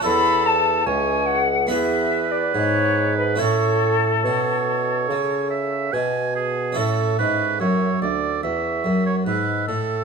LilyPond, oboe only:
\new Staff \with { instrumentName = "Oboe" } { \time 4/4 \key a \major \tempo 4 = 72 a'4 cis''8 r8 b'2 | cis''4 cis''4. e''8 gis''8 gis'8 | a'8 b'8 cis''8 d''8 e''8. cis''16 b'8 a'8 | }